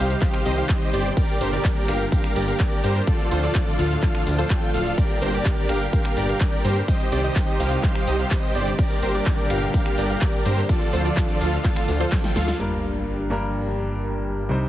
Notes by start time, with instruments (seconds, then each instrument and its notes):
Already playing: detuned saw bass C2, analog synth pad C3 D#3 G3 D#4 G4, supersaw synth G4 C5 F5
0.10 closed hi-hat, cabasa
0.22 supersaw synth G4 C5 F5, kick, clap, closed hi-hat, ride, cabasa
0.34 finger snap, closed hi-hat, cabasa
0.45 detuned saw bass C2, supersaw synth G4 C5 D#5, open hi-hat
0.57 supersaw synth G4 C5 F5, closed hi-hat, cabasa
0.69 supersaw synth G4 C5 D#5, kick, clap, closed hi-hat, ride, cabasa
0.81 closed hi-hat, cabasa
0.93 detuned saw bass G1, supersaw synth G4 C5 D5, open hi-hat
1.05 closed hi-hat, cabasa
1.17 analog synth pad A#2 D3 D4, supersaw synth G4 A#4 D5, kick, closed hi-hat, ride, cabasa
1.29 closed hi-hat, cabasa
1.41 detuned saw bass G1, supersaw synth G4 A#4 C5, open hi-hat
1.53 supersaw synth G4 A#4 D5, closed hi-hat, cabasa
1.64 supersaw synth G4 A#4 D5, kick, clap, closed hi-hat, ride, cabasa
1.76 closed hi-hat, cabasa
1.88 detuned saw bass G1, supersaw synth G4 A#4 F5, finger snap, open hi-hat
2.00 closed hi-hat, cabasa
2.12 supersaw synth G4 A#4 F5, kick, closed hi-hat, ride, cabasa
2.24 finger snap, closed hi-hat, cabasa
2.36 detuned saw bass G1, supersaw synth G4 A#4 D5, open hi-hat
2.48 supersaw synth G4 A#4 F5, closed hi-hat, cabasa
2.60 supersaw synth G4 A#4 D5, kick, clap, closed hi-hat, ride, cabasa
2.72 closed hi-hat, cabasa
2.84 detuned saw bass G2, supersaw synth G4 A#4 C5, open hi-hat
2.96 closed hi-hat, cabasa
3.07 analog synth pad A2 F3 F4, supersaw synth F4 A4 D5, kick, closed hi-hat, ride, cabasa
3.19 closed hi-hat, cabasa
3.31 detuned saw bass D2, supersaw synth F4 A4 C5, open hi-hat
3.43 supersaw synth F4 A4 D5, closed hi-hat, cabasa
3.55 supersaw synth F4 A4 D5, kick, clap, closed hi-hat, ride, cabasa
3.67 closed hi-hat, cabasa
3.79 detuned saw bass D2, supersaw synth F4 A4 F5, open hi-hat
3.91 closed hi-hat, cabasa
4.03 supersaw synth F4 A4 F5, kick, clap, closed hi-hat, ride, cabasa
4.15 finger snap, closed hi-hat, cabasa
4.26 detuned saw bass D2, open hi-hat
4.38 supersaw synth F4 A4 C5, closed hi-hat, cabasa
4.50 supersaw synth F4 A4 G5, kick, clap, closed hi-hat, ride, cabasa
4.62 closed hi-hat, cabasa
4.74 detuned saw bass D1, supersaw synth F4 A4 F5, open hi-hat
4.86 closed hi-hat, cabasa
4.98 analog synth pad A#2 G3 G4, supersaw synth G4 A#4 D5, kick, closed hi-hat, ride, cabasa
5.10 closed hi-hat, cabasa
5.22 detuned saw bass G1, supersaw synth G4 A#4 C5, open hi-hat
5.34 supersaw synth G4 A#4 D5, closed hi-hat, cabasa
5.45 supersaw synth G4 A#4 D5, kick, clap, closed hi-hat, ride, cabasa
5.57 closed hi-hat, cabasa
5.69 detuned saw bass G1, supersaw synth G4 A#4 F5, finger snap, open hi-hat
5.81 closed hi-hat, cabasa
5.93 supersaw synth G4 A#4 F5, kick, closed hi-hat, ride, cabasa
6.05 finger snap, closed hi-hat, cabasa
6.17 detuned saw bass G1, supersaw synth G4 A#4 D5, open hi-hat
6.29 supersaw synth G4 A#4 F5, closed hi-hat, cabasa
6.41 supersaw synth G4 A#4 D5, kick, clap, closed hi-hat, ride, cabasa
6.53 closed hi-hat, cabasa
6.64 detuned saw bass G2, supersaw synth G4 A#4 C5, open hi-hat
6.76 closed hi-hat, cabasa
6.88 analog synth pad C3 D#3 D#4 G4, supersaw synth G4 C5 D#5, kick, closed hi-hat, ride, cabasa
7.00 closed hi-hat, cabasa
7.12 detuned saw bass C2, supersaw synth G4 C5 D5, open hi-hat
7.24 supersaw synth G4 C5 D#5, closed hi-hat, cabasa
7.36 supersaw synth G4 C5 D#5, kick, clap, closed hi-hat, ride, cabasa
7.48 closed hi-hat, cabasa
7.60 detuned saw bass C2, supersaw synth G4 C5 F5, open hi-hat
7.72 closed hi-hat, cabasa
7.83 supersaw synth G4 C5 F5, kick, clap, closed hi-hat, ride, cabasa
7.95 finger snap, closed hi-hat, cabasa
8.07 detuned saw bass C2, supersaw synth G4 C5 D#5, open hi-hat
8.19 supersaw synth G4 C5 F5, closed hi-hat, cabasa
8.31 supersaw synth G4 C5 D#5, kick, clap, closed hi-hat, ride, cabasa
8.43 closed hi-hat, cabasa
8.55 detuned saw bass G1, supersaw synth G4 C5 D5, open hi-hat
8.67 closed hi-hat, cabasa
8.79 analog synth pad A#2 D3 G3 D4 G4, supersaw synth G4 A#4 D5, kick, closed hi-hat, ride, cabasa
8.91 closed hi-hat, cabasa
9.02 detuned saw bass G1, supersaw synth G4 A#4 C5, open hi-hat
9.14 supersaw synth G4 A#4 D5, closed hi-hat, cabasa
9.26 supersaw synth G4 A#4 D5, kick, clap, closed hi-hat, ride, cabasa
9.38 closed hi-hat, cabasa
9.50 detuned saw bass G1, supersaw synth G4 A#4 F5, finger snap, open hi-hat
9.62 closed hi-hat, cabasa
9.74 supersaw synth G4 A#4 F5, kick, closed hi-hat, ride, cabasa
9.86 finger snap, closed hi-hat, cabasa
9.98 detuned saw bass G1, supersaw synth G4 A#4 D5, open hi-hat
10.10 supersaw synth G4 A#4 F5, closed hi-hat, cabasa
10.21 supersaw synth G4 A#4 D5, kick, clap, closed hi-hat, ride, cabasa
10.33 closed hi-hat, cabasa
10.45 detuned saw bass G2, supersaw synth G4 A#4 C5, open hi-hat
10.57 closed hi-hat, cabasa
10.69 analog synth pad A2 F3 D4 F4, supersaw synth F4 A4 D5, kick, closed hi-hat, ride, cabasa
10.81 closed hi-hat, cabasa
10.93 detuned saw bass D2, supersaw synth F4 A4 C5, open hi-hat
11.05 supersaw synth F4 A4 D5, closed hi-hat, cabasa
11.17 supersaw synth F4 A4 D5, kick, clap, closed hi-hat, ride, cabasa
11.29 closed hi-hat, cabasa
11.41 detuned saw bass D2, supersaw synth F4 A4 F5, open hi-hat
11.53 closed hi-hat, cabasa
11.64 supersaw synth F4 A4 F5, kick, clap, closed hi-hat, ride, cabasa
11.76 finger snap, closed hi-hat, cabasa
11.88 detuned saw bass D2, open hi-hat
12.00 supersaw synth F4 A4 C5, closed hi-hat, cabasa
12.12 supersaw synth F4 A4 G5, kick, snare, clap, closed hi-hat, ride, cabasa
12.24 snare, closed hi-hat, cabasa
12.36 detuned saw bass D2, supersaw synth F4 A4 F5, snare, open hi-hat
12.48 snare, closed hi-hat, cabasa
12.58 detuned saw bass G1, grand piano G2 G3 A#3 D4 A#4, analog synth pad D4 G4 A#4 G5, sub drop
13.30 grand piano G2 G3 A#3 D4 A#4
14.49 detuned saw bass C2, grand piano C3 G3 C4 D#4 C5, analog synth pad D#4 G4 C5